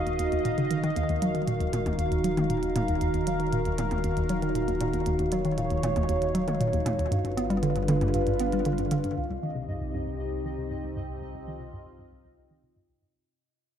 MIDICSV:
0, 0, Header, 1, 6, 480
1, 0, Start_track
1, 0, Key_signature, -6, "minor"
1, 0, Tempo, 512821
1, 901, Time_signature, 4, 2, 24, 8
1, 8581, Key_signature, -3, "minor"
1, 12902, End_track
2, 0, Start_track
2, 0, Title_t, "Synth texture"
2, 0, Program_c, 0, 99
2, 0, Note_on_c, 0, 77, 84
2, 8578, Note_on_c, 0, 75, 80
2, 8590, Note_off_c, 0, 77, 0
2, 12429, Note_off_c, 0, 75, 0
2, 12902, End_track
3, 0, Start_track
3, 0, Title_t, "Analog synth pad"
3, 0, Program_c, 1, 89
3, 0, Note_on_c, 1, 51, 78
3, 0, Note_on_c, 1, 63, 72
3, 0, Note_on_c, 1, 66, 75
3, 0, Note_on_c, 1, 75, 91
3, 888, Note_off_c, 1, 75, 0
3, 902, Note_on_c, 1, 70, 89
3, 4728, Note_off_c, 1, 70, 0
3, 4738, Note_on_c, 1, 73, 92
3, 6628, Note_off_c, 1, 51, 0
3, 6628, Note_off_c, 1, 63, 0
3, 6628, Note_off_c, 1, 66, 0
3, 6664, Note_off_c, 1, 73, 0
3, 6665, Note_on_c, 1, 55, 87
3, 6665, Note_on_c, 1, 65, 74
3, 6665, Note_on_c, 1, 71, 93
3, 6666, Note_on_c, 1, 62, 77
3, 8564, Note_off_c, 1, 55, 0
3, 8564, Note_off_c, 1, 65, 0
3, 8564, Note_off_c, 1, 71, 0
3, 8565, Note_off_c, 1, 62, 0
3, 8585, Note_on_c, 1, 48, 81
3, 8586, Note_on_c, 1, 67, 83
3, 8587, Note_on_c, 1, 60, 72
3, 8587, Note_on_c, 1, 63, 70
3, 10485, Note_off_c, 1, 67, 0
3, 10502, Note_on_c, 1, 65, 88
3, 12386, Note_off_c, 1, 48, 0
3, 12387, Note_off_c, 1, 60, 0
3, 12387, Note_off_c, 1, 63, 0
3, 12403, Note_off_c, 1, 65, 0
3, 12902, End_track
4, 0, Start_track
4, 0, Title_t, "Synth arpeggio sound"
4, 0, Program_c, 2, 84
4, 61, Note_on_c, 2, 39, 74
4, 121, Note_off_c, 2, 39, 0
4, 181, Note_on_c, 2, 39, 79
4, 241, Note_off_c, 2, 39, 0
4, 302, Note_on_c, 2, 39, 78
4, 338, Note_off_c, 2, 39, 0
4, 422, Note_on_c, 2, 46, 85
4, 481, Note_off_c, 2, 46, 0
4, 543, Note_on_c, 2, 49, 76
4, 602, Note_off_c, 2, 49, 0
4, 663, Note_on_c, 2, 51, 77
4, 698, Note_off_c, 2, 51, 0
4, 782, Note_on_c, 2, 51, 102
4, 842, Note_off_c, 2, 51, 0
4, 902, Note_on_c, 2, 39, 83
4, 961, Note_off_c, 2, 39, 0
4, 1025, Note_on_c, 2, 39, 77
4, 1083, Note_off_c, 2, 39, 0
4, 1143, Note_on_c, 2, 54, 77
4, 1231, Note_off_c, 2, 54, 0
4, 1260, Note_on_c, 2, 51, 73
4, 1320, Note_off_c, 2, 51, 0
4, 1381, Note_on_c, 2, 46, 84
4, 1470, Note_off_c, 2, 46, 0
4, 1501, Note_on_c, 2, 39, 76
4, 1537, Note_off_c, 2, 39, 0
4, 1619, Note_on_c, 2, 46, 102
4, 1680, Note_off_c, 2, 46, 0
4, 1741, Note_on_c, 2, 39, 80
4, 1777, Note_off_c, 2, 39, 0
4, 1858, Note_on_c, 2, 39, 81
4, 1919, Note_off_c, 2, 39, 0
4, 1979, Note_on_c, 2, 39, 77
4, 2040, Note_off_c, 2, 39, 0
4, 2099, Note_on_c, 2, 54, 78
4, 2189, Note_off_c, 2, 54, 0
4, 2220, Note_on_c, 2, 51, 78
4, 2280, Note_off_c, 2, 51, 0
4, 2339, Note_on_c, 2, 46, 88
4, 2430, Note_off_c, 2, 46, 0
4, 2460, Note_on_c, 2, 39, 79
4, 2496, Note_off_c, 2, 39, 0
4, 2580, Note_on_c, 2, 46, 101
4, 2641, Note_off_c, 2, 46, 0
4, 2701, Note_on_c, 2, 39, 77
4, 2737, Note_off_c, 2, 39, 0
4, 2822, Note_on_c, 2, 39, 84
4, 2881, Note_off_c, 2, 39, 0
4, 2940, Note_on_c, 2, 39, 73
4, 3001, Note_off_c, 2, 39, 0
4, 3061, Note_on_c, 2, 54, 75
4, 3151, Note_off_c, 2, 54, 0
4, 3182, Note_on_c, 2, 51, 76
4, 3241, Note_off_c, 2, 51, 0
4, 3302, Note_on_c, 2, 46, 86
4, 3391, Note_off_c, 2, 46, 0
4, 3423, Note_on_c, 2, 39, 77
4, 3458, Note_off_c, 2, 39, 0
4, 3543, Note_on_c, 2, 46, 106
4, 3602, Note_off_c, 2, 46, 0
4, 3663, Note_on_c, 2, 39, 78
4, 3698, Note_off_c, 2, 39, 0
4, 3783, Note_on_c, 2, 39, 82
4, 3842, Note_off_c, 2, 39, 0
4, 3903, Note_on_c, 2, 39, 77
4, 3962, Note_off_c, 2, 39, 0
4, 4023, Note_on_c, 2, 54, 75
4, 4111, Note_off_c, 2, 54, 0
4, 4140, Note_on_c, 2, 51, 77
4, 4200, Note_off_c, 2, 51, 0
4, 4259, Note_on_c, 2, 46, 85
4, 4350, Note_off_c, 2, 46, 0
4, 4379, Note_on_c, 2, 39, 81
4, 4416, Note_off_c, 2, 39, 0
4, 4500, Note_on_c, 2, 46, 103
4, 4560, Note_off_c, 2, 46, 0
4, 4621, Note_on_c, 2, 39, 74
4, 4657, Note_off_c, 2, 39, 0
4, 4742, Note_on_c, 2, 39, 85
4, 4801, Note_off_c, 2, 39, 0
4, 4862, Note_on_c, 2, 39, 74
4, 4921, Note_off_c, 2, 39, 0
4, 4984, Note_on_c, 2, 54, 77
4, 5072, Note_off_c, 2, 54, 0
4, 5102, Note_on_c, 2, 51, 75
4, 5161, Note_off_c, 2, 51, 0
4, 5222, Note_on_c, 2, 46, 81
4, 5311, Note_off_c, 2, 46, 0
4, 5342, Note_on_c, 2, 39, 71
4, 5377, Note_off_c, 2, 39, 0
4, 5460, Note_on_c, 2, 46, 106
4, 5521, Note_off_c, 2, 46, 0
4, 5581, Note_on_c, 2, 39, 79
4, 5617, Note_off_c, 2, 39, 0
4, 5699, Note_on_c, 2, 39, 85
4, 5760, Note_off_c, 2, 39, 0
4, 5818, Note_on_c, 2, 39, 71
4, 5879, Note_off_c, 2, 39, 0
4, 5939, Note_on_c, 2, 54, 82
4, 6030, Note_off_c, 2, 54, 0
4, 6061, Note_on_c, 2, 51, 79
4, 6121, Note_off_c, 2, 51, 0
4, 6180, Note_on_c, 2, 46, 84
4, 6270, Note_off_c, 2, 46, 0
4, 6300, Note_on_c, 2, 39, 81
4, 6337, Note_off_c, 2, 39, 0
4, 6418, Note_on_c, 2, 46, 101
4, 6479, Note_off_c, 2, 46, 0
4, 6540, Note_on_c, 2, 39, 78
4, 6576, Note_off_c, 2, 39, 0
4, 6658, Note_on_c, 2, 43, 82
4, 6719, Note_off_c, 2, 43, 0
4, 6781, Note_on_c, 2, 43, 75
4, 6841, Note_off_c, 2, 43, 0
4, 6901, Note_on_c, 2, 59, 77
4, 6991, Note_off_c, 2, 59, 0
4, 7021, Note_on_c, 2, 55, 78
4, 7081, Note_off_c, 2, 55, 0
4, 7140, Note_on_c, 2, 50, 84
4, 7230, Note_off_c, 2, 50, 0
4, 7260, Note_on_c, 2, 43, 77
4, 7296, Note_off_c, 2, 43, 0
4, 7380, Note_on_c, 2, 50, 107
4, 7441, Note_off_c, 2, 50, 0
4, 7501, Note_on_c, 2, 43, 79
4, 7537, Note_off_c, 2, 43, 0
4, 7622, Note_on_c, 2, 43, 83
4, 7681, Note_off_c, 2, 43, 0
4, 7744, Note_on_c, 2, 43, 73
4, 7802, Note_off_c, 2, 43, 0
4, 7864, Note_on_c, 2, 59, 76
4, 7952, Note_off_c, 2, 59, 0
4, 7986, Note_on_c, 2, 55, 78
4, 8043, Note_off_c, 2, 55, 0
4, 8106, Note_on_c, 2, 50, 86
4, 8193, Note_off_c, 2, 50, 0
4, 8227, Note_on_c, 2, 43, 79
4, 8260, Note_off_c, 2, 43, 0
4, 8346, Note_on_c, 2, 50, 101
4, 8403, Note_off_c, 2, 50, 0
4, 8469, Note_on_c, 2, 43, 77
4, 8501, Note_off_c, 2, 43, 0
4, 8588, Note_on_c, 2, 36, 80
4, 8644, Note_off_c, 2, 36, 0
4, 8707, Note_on_c, 2, 36, 74
4, 8764, Note_off_c, 2, 36, 0
4, 8828, Note_on_c, 2, 51, 68
4, 8914, Note_off_c, 2, 51, 0
4, 8944, Note_on_c, 2, 48, 73
4, 9002, Note_off_c, 2, 48, 0
4, 9065, Note_on_c, 2, 43, 78
4, 9152, Note_off_c, 2, 43, 0
4, 9185, Note_on_c, 2, 36, 68
4, 9219, Note_off_c, 2, 36, 0
4, 9306, Note_on_c, 2, 43, 94
4, 9363, Note_off_c, 2, 43, 0
4, 9426, Note_on_c, 2, 36, 72
4, 9460, Note_off_c, 2, 36, 0
4, 9544, Note_on_c, 2, 36, 76
4, 9603, Note_off_c, 2, 36, 0
4, 9662, Note_on_c, 2, 36, 67
4, 9721, Note_off_c, 2, 36, 0
4, 9783, Note_on_c, 2, 51, 74
4, 9871, Note_off_c, 2, 51, 0
4, 9903, Note_on_c, 2, 48, 75
4, 9962, Note_off_c, 2, 48, 0
4, 10022, Note_on_c, 2, 43, 77
4, 10111, Note_off_c, 2, 43, 0
4, 10142, Note_on_c, 2, 36, 73
4, 10177, Note_off_c, 2, 36, 0
4, 10262, Note_on_c, 2, 43, 93
4, 10321, Note_off_c, 2, 43, 0
4, 10380, Note_on_c, 2, 36, 69
4, 10417, Note_off_c, 2, 36, 0
4, 10502, Note_on_c, 2, 36, 77
4, 10561, Note_off_c, 2, 36, 0
4, 10622, Note_on_c, 2, 36, 69
4, 10681, Note_off_c, 2, 36, 0
4, 10742, Note_on_c, 2, 51, 70
4, 10831, Note_off_c, 2, 51, 0
4, 10859, Note_on_c, 2, 48, 71
4, 10920, Note_off_c, 2, 48, 0
4, 10980, Note_on_c, 2, 43, 77
4, 11070, Note_off_c, 2, 43, 0
4, 11100, Note_on_c, 2, 36, 66
4, 11136, Note_off_c, 2, 36, 0
4, 11221, Note_on_c, 2, 43, 93
4, 11281, Note_off_c, 2, 43, 0
4, 11341, Note_on_c, 2, 36, 75
4, 11377, Note_off_c, 2, 36, 0
4, 11464, Note_on_c, 2, 36, 75
4, 11523, Note_off_c, 2, 36, 0
4, 11584, Note_on_c, 2, 36, 68
4, 11642, Note_off_c, 2, 36, 0
4, 11706, Note_on_c, 2, 51, 69
4, 11793, Note_off_c, 2, 51, 0
4, 11824, Note_on_c, 2, 48, 73
4, 11882, Note_off_c, 2, 48, 0
4, 11945, Note_on_c, 2, 43, 77
4, 12033, Note_off_c, 2, 43, 0
4, 12065, Note_on_c, 2, 36, 68
4, 12099, Note_off_c, 2, 36, 0
4, 12184, Note_on_c, 2, 43, 89
4, 12242, Note_off_c, 2, 43, 0
4, 12902, End_track
5, 0, Start_track
5, 0, Title_t, "Sub bass"
5, 0, Program_c, 3, 38
5, 0, Note_on_c, 3, 27, 85
5, 877, Note_off_c, 3, 27, 0
5, 902, Note_on_c, 3, 27, 86
5, 6638, Note_off_c, 3, 27, 0
5, 6662, Note_on_c, 3, 31, 91
5, 8558, Note_off_c, 3, 31, 0
5, 8581, Note_on_c, 3, 36, 82
5, 12397, Note_off_c, 3, 36, 0
5, 12902, End_track
6, 0, Start_track
6, 0, Title_t, "Drums"
6, 62, Note_on_c, 9, 42, 42
6, 156, Note_off_c, 9, 42, 0
6, 180, Note_on_c, 9, 42, 94
6, 273, Note_off_c, 9, 42, 0
6, 301, Note_on_c, 9, 42, 38
6, 394, Note_off_c, 9, 42, 0
6, 422, Note_on_c, 9, 42, 66
6, 516, Note_off_c, 9, 42, 0
6, 542, Note_on_c, 9, 42, 40
6, 635, Note_off_c, 9, 42, 0
6, 661, Note_on_c, 9, 42, 87
6, 755, Note_off_c, 9, 42, 0
6, 783, Note_on_c, 9, 42, 41
6, 876, Note_off_c, 9, 42, 0
6, 902, Note_on_c, 9, 42, 69
6, 996, Note_off_c, 9, 42, 0
6, 1022, Note_on_c, 9, 42, 39
6, 1116, Note_off_c, 9, 42, 0
6, 1143, Note_on_c, 9, 42, 90
6, 1236, Note_off_c, 9, 42, 0
6, 1262, Note_on_c, 9, 42, 38
6, 1355, Note_off_c, 9, 42, 0
6, 1381, Note_on_c, 9, 42, 63
6, 1475, Note_off_c, 9, 42, 0
6, 1502, Note_on_c, 9, 42, 39
6, 1596, Note_off_c, 9, 42, 0
6, 1621, Note_on_c, 9, 42, 88
6, 1621, Note_on_c, 9, 48, 52
6, 1715, Note_off_c, 9, 42, 0
6, 1715, Note_off_c, 9, 48, 0
6, 1742, Note_on_c, 9, 42, 38
6, 1742, Note_on_c, 9, 48, 52
6, 1835, Note_off_c, 9, 42, 0
6, 1835, Note_off_c, 9, 48, 0
6, 1861, Note_on_c, 9, 42, 68
6, 1955, Note_off_c, 9, 42, 0
6, 1983, Note_on_c, 9, 42, 42
6, 2076, Note_off_c, 9, 42, 0
6, 2100, Note_on_c, 9, 42, 87
6, 2194, Note_off_c, 9, 42, 0
6, 2222, Note_on_c, 9, 42, 39
6, 2222, Note_on_c, 9, 48, 55
6, 2316, Note_off_c, 9, 42, 0
6, 2316, Note_off_c, 9, 48, 0
6, 2340, Note_on_c, 9, 42, 67
6, 2434, Note_off_c, 9, 42, 0
6, 2460, Note_on_c, 9, 42, 39
6, 2553, Note_off_c, 9, 42, 0
6, 2580, Note_on_c, 9, 42, 90
6, 2580, Note_on_c, 9, 48, 67
6, 2674, Note_off_c, 9, 42, 0
6, 2674, Note_off_c, 9, 48, 0
6, 2699, Note_on_c, 9, 42, 39
6, 2793, Note_off_c, 9, 42, 0
6, 2819, Note_on_c, 9, 42, 62
6, 2913, Note_off_c, 9, 42, 0
6, 2940, Note_on_c, 9, 42, 40
6, 3033, Note_off_c, 9, 42, 0
6, 3060, Note_on_c, 9, 42, 90
6, 3154, Note_off_c, 9, 42, 0
6, 3181, Note_on_c, 9, 42, 37
6, 3274, Note_off_c, 9, 42, 0
6, 3300, Note_on_c, 9, 42, 67
6, 3394, Note_off_c, 9, 42, 0
6, 3421, Note_on_c, 9, 42, 38
6, 3514, Note_off_c, 9, 42, 0
6, 3541, Note_on_c, 9, 42, 87
6, 3541, Note_on_c, 9, 48, 52
6, 3635, Note_off_c, 9, 42, 0
6, 3635, Note_off_c, 9, 48, 0
6, 3661, Note_on_c, 9, 42, 38
6, 3661, Note_on_c, 9, 48, 53
6, 3755, Note_off_c, 9, 42, 0
6, 3755, Note_off_c, 9, 48, 0
6, 3781, Note_on_c, 9, 42, 63
6, 3875, Note_off_c, 9, 42, 0
6, 3902, Note_on_c, 9, 42, 40
6, 3995, Note_off_c, 9, 42, 0
6, 4019, Note_on_c, 9, 42, 85
6, 4113, Note_off_c, 9, 42, 0
6, 4141, Note_on_c, 9, 42, 37
6, 4235, Note_off_c, 9, 42, 0
6, 4262, Note_on_c, 9, 42, 63
6, 4355, Note_off_c, 9, 42, 0
6, 4382, Note_on_c, 9, 42, 37
6, 4475, Note_off_c, 9, 42, 0
6, 4498, Note_on_c, 9, 42, 90
6, 4592, Note_off_c, 9, 42, 0
6, 4620, Note_on_c, 9, 42, 39
6, 4713, Note_off_c, 9, 42, 0
6, 4737, Note_on_c, 9, 42, 66
6, 4831, Note_off_c, 9, 42, 0
6, 4859, Note_on_c, 9, 42, 38
6, 4953, Note_off_c, 9, 42, 0
6, 4977, Note_on_c, 9, 42, 87
6, 5071, Note_off_c, 9, 42, 0
6, 5099, Note_on_c, 9, 42, 36
6, 5193, Note_off_c, 9, 42, 0
6, 5221, Note_on_c, 9, 42, 64
6, 5315, Note_off_c, 9, 42, 0
6, 5340, Note_on_c, 9, 42, 36
6, 5433, Note_off_c, 9, 42, 0
6, 5461, Note_on_c, 9, 42, 89
6, 5461, Note_on_c, 9, 48, 53
6, 5555, Note_off_c, 9, 42, 0
6, 5555, Note_off_c, 9, 48, 0
6, 5579, Note_on_c, 9, 42, 37
6, 5579, Note_on_c, 9, 48, 53
6, 5673, Note_off_c, 9, 42, 0
6, 5673, Note_off_c, 9, 48, 0
6, 5700, Note_on_c, 9, 42, 65
6, 5794, Note_off_c, 9, 42, 0
6, 5821, Note_on_c, 9, 42, 40
6, 5914, Note_off_c, 9, 42, 0
6, 5943, Note_on_c, 9, 42, 85
6, 6036, Note_off_c, 9, 42, 0
6, 6062, Note_on_c, 9, 42, 36
6, 6062, Note_on_c, 9, 48, 52
6, 6156, Note_off_c, 9, 42, 0
6, 6156, Note_off_c, 9, 48, 0
6, 6184, Note_on_c, 9, 42, 61
6, 6277, Note_off_c, 9, 42, 0
6, 6302, Note_on_c, 9, 42, 37
6, 6396, Note_off_c, 9, 42, 0
6, 6422, Note_on_c, 9, 42, 90
6, 6422, Note_on_c, 9, 48, 70
6, 6515, Note_off_c, 9, 42, 0
6, 6515, Note_off_c, 9, 48, 0
6, 6546, Note_on_c, 9, 42, 38
6, 6639, Note_off_c, 9, 42, 0
6, 6663, Note_on_c, 9, 42, 66
6, 6757, Note_off_c, 9, 42, 0
6, 6784, Note_on_c, 9, 42, 38
6, 6878, Note_off_c, 9, 42, 0
6, 6904, Note_on_c, 9, 42, 85
6, 6997, Note_off_c, 9, 42, 0
6, 7024, Note_on_c, 9, 42, 38
6, 7117, Note_off_c, 9, 42, 0
6, 7140, Note_on_c, 9, 42, 63
6, 7234, Note_off_c, 9, 42, 0
6, 7260, Note_on_c, 9, 42, 37
6, 7354, Note_off_c, 9, 42, 0
6, 7379, Note_on_c, 9, 42, 85
6, 7379, Note_on_c, 9, 48, 56
6, 7473, Note_off_c, 9, 42, 0
6, 7473, Note_off_c, 9, 48, 0
6, 7501, Note_on_c, 9, 42, 37
6, 7501, Note_on_c, 9, 48, 55
6, 7594, Note_off_c, 9, 42, 0
6, 7594, Note_off_c, 9, 48, 0
6, 7619, Note_on_c, 9, 42, 65
6, 7712, Note_off_c, 9, 42, 0
6, 7738, Note_on_c, 9, 42, 41
6, 7832, Note_off_c, 9, 42, 0
6, 7858, Note_on_c, 9, 42, 89
6, 7952, Note_off_c, 9, 42, 0
6, 7979, Note_on_c, 9, 42, 38
6, 8073, Note_off_c, 9, 42, 0
6, 8099, Note_on_c, 9, 42, 64
6, 8193, Note_off_c, 9, 42, 0
6, 8220, Note_on_c, 9, 42, 40
6, 8314, Note_off_c, 9, 42, 0
6, 8341, Note_on_c, 9, 42, 85
6, 8435, Note_off_c, 9, 42, 0
6, 8462, Note_on_c, 9, 42, 39
6, 8555, Note_off_c, 9, 42, 0
6, 12902, End_track
0, 0, End_of_file